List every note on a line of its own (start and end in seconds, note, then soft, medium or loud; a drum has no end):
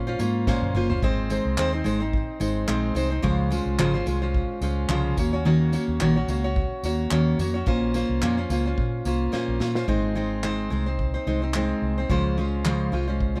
0.00 0.15 A#2 loud
0.07 0.19 C#4 soft
0.07 0.19 F4 medium
0.07 0.19 C5 medium
0.19 0.55 G#2 medium
0.19 0.46 A#3 medium
0.19 0.47 C#4 medium
0.19 0.47 F4 medium
0.19 0.47 C5 medium
0.19 tambourine medium
0.47 0.75 A#2 medium
0.47 0.73 A#3 medium
0.47 0.74 C#4 medium
0.47 0.75 F4 medium
0.47 0.76 C5 medium
0.47 kick loud
0.47 snare medium
0.62 0.72 F#2 medium
0.62 high tom medium
0.74 0.97 F#1 medium
0.74 0.90 A#3 medium
0.74 0.90 C#4 medium
0.74 0.90 F4 medium
0.74 0.88 C5 medium
0.74 mid tom medium
0.90 1.03 C#4 soft
0.90 1.03 F4 soft
0.90 1.02 C5 medium
0.90 floor tom medium
1.02 1.38 G#1 medium
1.02 1.29 G#3 medium
1.02 1.30 C4 medium
1.02 1.29 D#4 medium
1.02 1.30 C5 medium
1.02 kick loud
1.30 1.56 G#3 medium
1.30 1.57 C4 medium
1.30 1.57 D#4 medium
1.30 1.58 C5 medium
1.30 tambourine medium
1.45 1.55 C2 medium
1.57 1.81 D#2 medium
1.57 1.73 G#3 medium
1.57 1.72 C4 medium
1.57 1.73 D#4 medium
1.57 1.71 C5 medium
1.57 clap medium
1.72 1.84 C4 soft
1.72 1.84 D#4 soft
1.72 1.85 C5 medium
1.84 2.21 G#1 medium
1.84 2.00 G#3 medium
1.84 2.00 C4 medium
1.84 2.00 D#4 medium
1.84 1.99 C5 medium
1.84 tambourine medium
2.00 2.40 C4 soft
2.00 2.39 D#4 soft
2.00 2.41 C5 medium
2.13 kick loud
2.40 2.63 G#1 medium
2.40 2.66 G#3 medium
2.40 2.67 C4 medium
2.40 2.67 D#4 medium
2.40 2.68 C5 medium
2.40 tambourine medium
2.67 2.91 A#1 medium
2.67 2.94 G#3 medium
2.67 2.95 C4 medium
2.67 2.94 D#4 medium
2.67 2.96 C5 medium
2.67 clap loud
2.95 3.18 C2 medium
2.95 3.11 G#3 medium
2.95 3.10 C4 medium
2.95 3.11 D#4 medium
2.95 3.09 C5 medium
2.95 tambourine medium
3.10 3.23 C4 soft
3.10 3.23 D#4 soft
3.10 3.23 C5 medium
3.22 3.59 C#2 loud
3.22 3.51 C#3 medium
3.22 3.51 F3 medium
3.22 3.49 G#3 medium
3.22 3.50 C#4 medium
3.22 3.50 F4 medium
3.22 3.51 C5 medium
3.22 kick loud
3.50 3.78 G#3 medium
3.50 3.78 C#4 medium
3.50 3.78 F4 medium
3.50 3.79 C5 medium
3.50 tambourine medium
3.66 3.76 C2 medium
3.78 4.01 G#1 medium
3.78 3.94 C#3 medium
3.78 3.94 F3 medium
3.78 3.94 G#3 medium
3.78 3.94 C#4 medium
3.78 3.93 F4 medium
3.78 3.93 C5 loud
3.78 clap loud
3.94 4.05 G#3 soft
3.94 4.05 C#4 soft
3.94 4.06 F4 soft
3.94 4.07 C5 medium
4.06 4.42 C2 medium
4.06 4.22 G#3 medium
4.06 4.22 C#4 medium
4.06 4.21 F4 medium
4.06 4.21 C5 medium
4.06 tambourine medium
4.22 4.60 G#3 soft
4.22 4.61 C#4 soft
4.22 4.62 F4 soft
4.22 4.62 C5 medium
4.34 kick medium
4.61 4.84 C#2 medium
4.61 4.88 G#3 medium
4.61 4.88 C#4 medium
4.61 4.89 F4 medium
4.61 4.89 C5 medium
4.61 tambourine medium
4.89 5.12 C2 medium
4.89 5.17 C#3 medium
4.89 5.17 F3 medium
4.89 5.17 G#3 medium
4.89 5.17 C#4 medium
4.89 5.18 F4 medium
4.89 5.18 C5 medium
4.89 clap medium
5.17 5.76 D#2 medium
5.17 5.33 A#3 medium
5.17 5.33 C#4 medium
5.17 5.32 F#4 medium
5.17 5.32 C#5 medium
5.17 kick loud
5.17 tambourine medium
5.33 5.45 C#4 soft
5.33 5.45 F#4 medium
5.33 5.45 C#5 medium
5.45 5.73 D#3 medium
5.45 5.71 A#3 medium
5.45 5.72 C#4 medium
5.45 5.73 F#4 medium
5.45 5.73 C#5 medium
5.72 5.99 A#3 medium
5.72 5.99 C#4 medium
5.72 6.00 F#4 medium
5.72 6.01 C#5 medium
5.72 tambourine medium
5.88 5.98 D#2 medium
6.00 6.23 A#1 medium
6.00 6.16 D#3 medium
6.00 6.16 A#3 medium
6.00 6.16 C#4 medium
6.00 6.16 F#4 medium
6.00 6.15 C#5 medium
6.00 clap medium
6.16 6.28 C#4 soft
6.16 6.29 F#4 medium
6.16 6.28 C#5 medium
6.28 6.63 C#2 medium
6.28 6.44 A#3 medium
6.28 6.44 C#4 medium
6.28 6.44 F#4 medium
6.28 6.43 C#5 medium
6.28 tambourine medium
6.44 6.83 C#4 soft
6.44 6.84 F#4 soft
6.44 6.84 C#5 medium
6.56 kick loud
6.83 7.06 D#2 medium
6.83 7.10 A#3 medium
6.83 7.11 C#4 medium
6.83 7.11 F#4 medium
6.83 7.11 C#5 medium
6.83 tambourine medium
7.11 7.34 D#2 medium
7.11 7.39 D#3 medium
7.11 7.38 A#3 medium
7.11 7.39 C#4 medium
7.11 7.40 F#4 medium
7.11 7.40 C#5 medium
7.11 clap loud
7.38 7.61 F2 medium
7.38 7.54 A#3 medium
7.38 7.55 C#4 medium
7.38 7.54 F#4 medium
7.38 7.53 C#5 medium
7.38 tambourine medium
7.54 7.66 C#4 soft
7.54 7.67 F#4 soft
7.54 7.67 C#5 medium
7.66 8.02 A#1 medium
7.66 7.94 A#2 medium
7.66 7.93 A#3 medium
7.66 7.94 C#4 medium
7.66 7.94 F4 medium
7.66 7.95 C5 medium
7.66 kick loud
7.94 8.21 A#3 medium
7.94 8.22 C#4 medium
7.94 8.22 F4 medium
7.94 8.22 C5 medium
7.94 tambourine medium
8.09 8.20 C2 medium
8.22 8.45 F2 medium
8.22 8.37 A#2 medium
8.22 8.37 A#3 medium
8.22 8.38 C#4 medium
8.22 8.37 F4 medium
8.22 8.36 C5 medium
8.22 clap medium
8.37 8.50 C#4 soft
8.37 8.50 F4 medium
8.37 8.50 C5 medium
8.49 8.72 C#2 medium
8.49 8.65 A#3 medium
8.49 8.66 C#4 medium
8.49 8.65 F4 medium
8.49 8.64 C5 medium
8.49 tambourine medium
8.65 9.05 C#4 soft
8.65 9.06 F4 soft
8.65 9.05 C5 medium
8.77 9.00 A#2 loud
8.77 kick loud
9.05 9.28 C2 medium
9.05 9.31 A#3 medium
9.05 9.32 C#4 medium
9.05 9.32 F4 medium
9.05 9.32 C5 medium
9.05 tambourine medium
9.32 9.60 A#2 medium
9.32 9.59 A#3 medium
9.32 9.60 C#4 medium
9.32 9.60 F4 medium
9.32 9.61 C5 medium
9.32 snare medium
9.48 9.58 A#1 medium
9.60 9.83 A#2 medium
9.60 9.76 A#3 medium
9.60 9.76 C#4 medium
9.60 9.75 F4 medium
9.60 9.75 C5 medium
9.60 snare medium
9.75 9.88 C#4 soft
9.75 9.88 F4 soft
9.75 9.88 C5 medium
9.75 snare medium
9.88 10.67 G#1 medium
9.88 10.14 G#3 medium
9.88 10.15 C4 medium
9.88 10.15 D#4 medium
9.88 10.16 C5 medium
9.88 kick loud
10.15 10.42 G#3 medium
10.15 10.43 C4 medium
10.15 10.42 D#4 medium
10.15 10.43 C5 medium
10.43 10.69 G#3 medium
10.43 10.71 C4 medium
10.43 10.70 D#4 medium
10.43 10.71 C5 medium
10.43 clap medium
10.70 11.17 C2 medium
10.70 10.86 G#3 medium
10.70 10.86 C4 medium
10.70 10.87 D#4 medium
10.70 10.85 C5 medium
10.86 11.14 C4 soft
10.86 11.14 D#4 soft
10.86 11.13 C5 soft
10.99 kick medium
11.14 11.27 C4 soft
11.14 11.26 D#4 soft
11.14 11.27 C5 medium
11.27 11.72 C2 medium
11.27 11.42 G#3 medium
11.27 11.42 C4 medium
11.27 11.42 D#4 medium
11.27 11.41 C5 medium
11.42 11.55 C4 soft
11.42 11.55 D#4 soft
11.42 11.54 C5 soft
11.54 11.98 G#3 medium
11.54 11.98 C4 medium
11.54 11.98 D#4 medium
11.54 11.97 C5 medium
11.54 clap medium
11.82 12.05 C2 medium
11.98 12.10 C4 soft
11.98 12.10 D#4 soft
11.98 12.10 C5 medium
12.10 12.89 C#2 medium
12.10 12.38 C#3 medium
12.10 12.38 F3 medium
12.10 12.36 G#3 medium
12.10 12.37 C#4 medium
12.10 12.37 F4 medium
12.10 12.38 C5 medium
12.10 kick loud
12.37 12.64 G#3 medium
12.37 12.64 C#4 medium
12.37 12.65 F4 medium
12.37 12.65 C5 medium
12.65 12.93 C#3 medium
12.65 12.93 F3 medium
12.65 12.91 G#3 medium
12.65 12.92 C#4 medium
12.65 12.92 F4 medium
12.65 12.93 C5 medium
12.65 clap medium
12.92 13.38 C2 medium
12.92 13.08 G#3 medium
12.92 13.08 C#4 medium
12.92 13.07 F4 medium
12.92 13.06 C5 medium
13.08 13.36 G#3 soft
13.08 13.35 C#4 soft
13.08 13.35 F4 soft
13.08 13.34 C5 medium
13.20 kick medium
13.35 13.40 C#4 soft
13.35 13.40 F4 soft
13.35 13.40 C5 medium